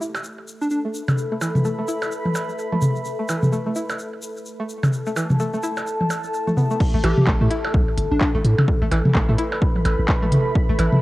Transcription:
Already playing: ambient pad A4
0.01 synth pluck E4, shaker
0.10 ambient pad E5
0.15 percussion blips, shaker
0.24 shaker
0.36 ambient pad B5
0.48 shaker
0.61 digital synth lead D4, shaker
0.70 digital synth lead D4, shaker
0.85 synth pluck A3
0.94 shaker
1.08 mid tom, percussion blips, shaker
1.18 shaker
1.32 synth pluck A3
1.41 synth pluck E3, percussion blips, shaker
1.55 mid tom, high tom, shaker
1.65 synth pluck A3, shaker
1.79 synth pluck A3
1.88 synth pluck E4, shaker
2.02 percussion blips, shaker
2.12 shaker
2.25 high tom
2.35 percussion blips, shaker
2.49 shaker
2.59 shaker
2.72 synth pluck A3, high tom
2.82 mid tom, shaker
2.96 shaker
3.05 shaker
3.19 synth pluck A3
3.29 synth pluck E3, percussion blips, shaker
3.43 mid tom, high tom, shaker
3.52 synth pluck A3, shaker
3.66 synth pluck A3
3.75 synth pluck E4, shaker
3.89 percussion blips, shaker
3.99 shaker
4.13 ambient pad A5
4.22 shaker
4.37 shaker
4.46 shaker
4.60 synth pluck A3
4.69 shaker
4.83 mid tom, percussion blips, shaker
4.93 shaker
5.06 synth pluck A3, shaker
5.16 synth pluck E3, percussion blips, shaker
5.30 mid tom, high tom, shaker
5.40 synth pluck A3, shaker
5.53 synth pluck A3, shaker
5.63 synth pluck E4, shaker
5.77 percussion blips, shaker
5.87 shaker
6.00 high tom
6.10 percussion blips, shaker
6.23 shaker
6.34 shaker
6.47 synth pluck A3, high tom, shaker
6.57 synth pluck B3, mid tom, shaker
6.71 synth pluck A3, shaker
6.80 kick, crash
6.94 sub bass A1, synth pluck A3
7.04 sub bass A1, synth pluck E3, digital synth lead G4, closed hi-hat, percussion blips
7.18 mid tom, high tom
7.27 sub bass A1, synth pluck A3, kick, clap
7.41 sub bass A2, synth pluck A3
7.51 synth pluck E4, closed hi-hat
7.65 percussion blips
7.74 sub bass C2, kick
7.98 sub bass G1, closed hi-hat
8.06 ambient pad B5
8.11 sub bass A1, digital synth lead D4
8.21 digital synth lead D4, kick, clap
8.35 sub bass A1, synth pluck A3
8.45 sub bass A2, closed hi-hat
8.58 mid tom, percussion blips
8.68 kick
8.82 sub bass A1, synth pluck A3
8.91 sub bass A1, synth pluck E3, closed hi-hat, percussion blips
9.05 mid tom, high tom
9.15 sub bass A1, synth pluck A3, kick, clap
9.29 sub bass A2, synth pluck A3
9.38 synth pluck E4, closed hi-hat
9.52 percussion blips
9.62 kick
9.76 high tom
9.85 sub bass A1, closed hi-hat, percussion blips
9.99 sub bass A1
10.09 kick, clap
10.22 synth pluck A3, high tom
10.32 closed hi-hat, mid tom
10.55 kick
10.69 sub bass A1, synth pluck A3
10.79 sub bass A1, synth pluck E3, closed hi-hat, percussion blips
10.93 mid tom, high tom

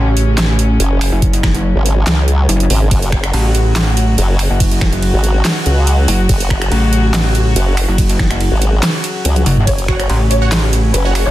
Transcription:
Already playing: wobble bass A1, string section C#3 F#3 C#4
0.17 closed hi-hat
0.38 snare, clap, closed hi-hat
0.59 closed hi-hat
0.80 wobble bass F#1, closed hi-hat
1.01 finger snap, open hi-hat
1.12 wobble bass F#1
1.22 kick, closed hi-hat
1.33 closed hi-hat
1.43 finger snap, kick, snare
1.54 wobble bass F#1, closed hi-hat
1.76 wobble bass G#1
1.86 closed hi-hat
2.07 wobble bass C#2, snare, clap, closed hi-hat
2.28 closed hi-hat
2.49 wobble bass F#1, closed hi-hat
2.60 closed hi-hat
2.70 wobble bass G#1, open hi-hat
2.91 wobble bass F#1, string section F#4, kick, closed hi-hat, ride
3.02 closed hi-hat
3.12 finger snap, kick
3.24 finger snap, closed hi-hat
3.33 wobble bass A1, ride
3.55 closed hi-hat
3.76 snare, clap, closed hi-hat, ride
3.97 closed hi-hat
4.18 wobble bass F#1, closed hi-hat, ride
4.39 finger snap, open hi-hat
4.50 wobble bass F#1
4.60 kick, closed hi-hat, ride
4.71 closed hi-hat
4.81 finger snap, kick, snare
4.93 wobble bass F#1, closed hi-hat
5.03 ride
5.14 wobble bass G#1
5.24 closed hi-hat
5.45 snare, clap, closed hi-hat, ride
5.66 wobble bass C#2, closed hi-hat
5.87 closed hi-hat, ride
6.08 wobble bass F#1, open hi-hat
6.29 wobble bass F#1, kick, closed hi-hat, ride
6.40 closed hi-hat
6.50 finger snap, kick
6.62 finger snap, closed hi-hat
6.72 wobble bass A1, ride
6.93 closed hi-hat
7.14 snare, clap, closed hi-hat, ride
7.35 closed hi-hat
7.56 wobble bass F#1, closed hi-hat, ride
7.77 finger snap, open hi-hat
7.88 wobble bass F#1
7.98 kick, closed hi-hat, ride
8.09 closed hi-hat
8.19 finger snap, kick, snare
8.31 wobble bass F#1, finger snap, closed hi-hat
8.41 ride
8.52 wobble bass G#1
8.62 closed hi-hat
8.83 snare, clap, closed hi-hat, ride
9.04 closed hi-hat
9.25 wobble bass C#2, closed hi-hat, ride
9.36 closed hi-hat, high tom
9.46 wobble bass F#1, open hi-hat, mid tom
9.57 mid tom
9.67 wobble bass F#1, string section C#4, violin section C#5, kick, closed hi-hat, ride
9.78 closed hi-hat
9.88 supersaw synth F#4 C#5 F#5, finger snap, kick
10.00 violin section C#5, finger snap, closed hi-hat
10.09 wobble bass A1, ride
10.31 violin section C#5, closed hi-hat
10.42 supersaw synth F#4 C#5 F#5
10.52 snare, clap, closed hi-hat, ride
10.73 closed hi-hat
10.94 wobble bass F#1, violin section B4, closed hi-hat, ride
11.05 supersaw synth F#4 C#5 F#5
11.15 supersaw synth F#4 C#5 F#5, finger snap, open hi-hat
11.26 wobble bass F#1, violin section C#5

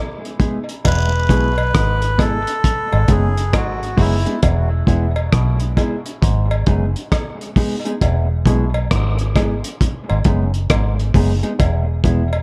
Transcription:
0.25 closed hi-hat
0.40 clean electric guitar G#3 B3 D#4 G#4, kick, closed hi-hat
0.69 closed hi-hat
0.85 fingered electric bass E1, clav E2, melodica B4, kick, closed hi-hat, cowbell, vibraslap
1.29 fingered electric bass B1, clav B2, clean electric guitar G#3 B3 E4 G#4, kick, closed hi-hat
1.58 cowbell
1.74 fingered electric bass G#1, clav G#2, kick, cross-stick, closed hi-hat
2.02 closed hi-hat
2.18 clean electric guitar G#3 B3 E4 G#4, melodica A4, kick, cross-stick, closed hi-hat, cowbell
2.47 closed hi-hat
2.64 kick, closed hi-hat
2.92 fingered electric bass G#1, clav G#2, cowbell
3.08 fingered electric bass F#1, clav F#2, clean electric guitar G#3 B3 D#4 G#4, melodica G#4, kick, closed hi-hat
3.37 closed hi-hat
3.53 fingered electric bass G#1, clav G#2, melodica F#4, kick, cross-stick, closed hi-hat, cowbell
3.83 closed hi-hat
3.97 fingered electric bass F#1, clav F#2, clean electric guitar G#3 B3 D#4 G#4, melodica E4, kick, open hi-hat
4.26 clean electric guitar G#3 B3 D#4 G#4, closed hi-hat
4.43 fingered electric bass E1, clav E2, kick, closed hi-hat, cowbell
4.87 fingered electric bass E1, clav E2, clean electric guitar G#3 B3 E4 G#4, kick, closed hi-hat
5.16 cowbell
5.32 fingered electric bass B1, clav B2, kick, cross-stick, closed hi-hat
5.60 closed hi-hat
5.77 clean electric guitar G#3 B3 E4 G#4, kick, closed hi-hat, cowbell
6.06 closed hi-hat
6.22 fingered electric bass G#1, clav G#2, kick, closed hi-hat
6.51 cowbell
6.66 fingered electric bass F#1, clav F#2, clean electric guitar G#3 B3 D#4 G#4, kick, closed hi-hat
6.96 closed hi-hat
7.12 kick, cross-stick, closed hi-hat, cowbell
7.41 closed hi-hat
7.56 clean electric guitar G#3 B3 D#4 G#4, kick, open hi-hat
7.85 clean electric guitar G#3 B3 D#4 G#4, closed hi-hat
8.01 fingered electric bass E1, clav E2, kick, closed hi-hat, cowbell
8.46 fingered electric bass B1, clav B2, clean electric guitar G#3 B3 E4 G#4, kick, closed hi-hat
8.74 cowbell
8.91 fingered electric bass G#1, clav G#2, kick, cross-stick, closed hi-hat
9.19 closed hi-hat
9.36 clean electric guitar G#3 B3 E4 G#4, kick, cross-stick, closed hi-hat, cowbell
9.64 closed hi-hat
9.81 kick, closed hi-hat
10.09 fingered electric bass G#1, clav G#2, cowbell
10.24 fingered electric bass F#1, clav F#2, clean electric guitar G#3 B3 D#4 G#4, kick, closed hi-hat
10.54 closed hi-hat
10.70 fingered electric bass G#1, clav G#2, kick, cross-stick, closed hi-hat, cowbell
10.99 closed hi-hat
11.14 fingered electric bass F#1, clav F#2, clean electric guitar G#3 B3 D#4 G#4, kick, open hi-hat
11.43 clean electric guitar G#3 B3 D#4 G#4, closed hi-hat
11.59 fingered electric bass E1, clav E2, kick, closed hi-hat, cowbell
12.04 fingered electric bass E1, clav E2, clean electric guitar G#3 B3 E4 G#4, kick, closed hi-hat
12.33 cowbell

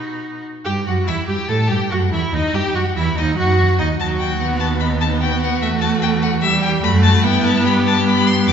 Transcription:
Already playing: cello B2, viola D#4, violin F#4 B5
0.65 cello G2, viola G4, violin G4 G5
0.86 cello F#2, violin F#4 F#5, viola F#4
1.06 cello E2, viola E4, violin E4 E5
1.27 cello G2, viola G4, violin G4 G5
1.48 cello A2, violin A4 A5, viola A4
1.68 cello G2, violin G4 G5, viola G4
1.90 cello F#2, violin F#4 F#5, viola F#4
2.11 cello E2, violin E4 E5, viola E4
2.33 cello D#2, violin D#4 D#5, viola D#4
2.52 cello G2, violin G4 G5, viola G4
2.74 cello F#2, violin F#4 F#5, viola F#4
2.95 cello E2, violin E4 E5, viola E4
3.16 cello D#2, violin D#4 D#5, viola D#4
3.37 cello F#2, violin F#4 F#5, viola F#4
3.78 cello D#2, violin D#4 D#5, viola D#4
3.99 cello D#2, viola F#3, violin F#4 A5
4.20 violin G5
4.39 viola B3, violin F#5
4.59 violin A5
4.80 viola B3, violin D#4 B5
5.01 violin A5
5.21 violin F#4 G5
5.42 violin F#5
5.61 cello E2, viola A3, violin E5
5.81 violin A5
6.02 violin G5
6.22 violin F#5
6.42 viola G3, violin G4 E5
6.62 violin G5
6.83 cello F#2, viola A3, violin F#4 B5
7.03 violin A5
7.23 cello G2, viola B3, violin E4 G5
7.44 violin A5
7.64 violin G4 B5
7.86 violin A5
8.05 viola B3, violin B5
8.27 violin C6
8.46 cello E2, violin G4 D6

